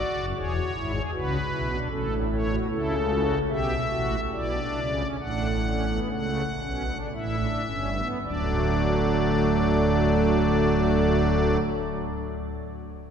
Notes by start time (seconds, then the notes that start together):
Already playing: F#4 D5
0.15 F#1 F#2
0.35 E1 E2 G#4 C#5
0.55 F#4
0.75 G#1 G#2 E4
0.95 G#4
1.13 C#2 C#3 F#4 B4
1.52 B1 B2 E4
1.72 D4
1.90 A1 A2 C#4 A4
2.11 D4
2.32 E4 C#5
2.51 F#4
2.70 C#2 C#3 E4 A4
3.10 F#4
3.49 B1 B2 G4 E5
3.90 A1 A2 F#4
4.32 B1 B2 E4 D5
4.53 D4
4.74 C#2 C#3
4.98 C#4
5.19 A1 A2 D4 F#5
5.66 C#4
5.88 B3
6.11 C#2 C#3 A3 F#5
6.60 B1 B2 C#4
6.87 D4
7.14 A1 A2 E4 E5
7.39 D4
7.66 G1 G2 C#4
7.95 B3
8.23 D1 D2 F#3 A3 D4 D5